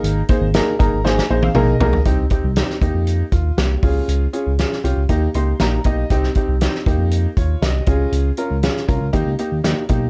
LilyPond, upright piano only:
\new Staff \with { instrumentName = "Upright piano" } { \time 4/4 \key aes \lydian \tempo 4 = 119 << { r4. bes''8 aes''8. f''16 ees''4 | \key ees \mixolydian r2 r8 f'8 <bes g'>4 | r2 r8 c'''8 bes''8 ees''8 | r2 r8 <f' des''>8 <g' ees''>4 |
r1 | } \\ { <bes ees' aes' bes'>8 <bes ees' aes' c''>8 <bes ees' aes' bes'>8 <bes ees' aes' bes'>8 <bes ees' aes' c''>8 <bes ees' aes' c''>8 <bes ees' aes' bes'>8 <bes ees' aes' bes'>8 | <c' ees' g'>8 <c' ees' g'>8 <c' ees' g'>8 <bes ees' g'>4 r4 <des' f' aes'>8~ | <des' f' aes'>8 <des' f' aes'>8 <des' f' aes'>8 <des' f' g'>8 <bes ees' g'>8 <bes ees' g'>8 <bes ees' g'>8 <bes ees' g'>8 | <c' ees' g'>8 <c' ees' g'>8 <c' ees' g'>8 <bes ees' g'>4 r4 <des' f' aes'>8~ |
<des' f' aes'>8 <des' f' bes'>8 <des' f' aes'>8 <des' f' bes'>8 <bes ees' g'>8 <bes ees' g'>8 <bes ees' g'>8 <bes ees' g'>8 | } >> }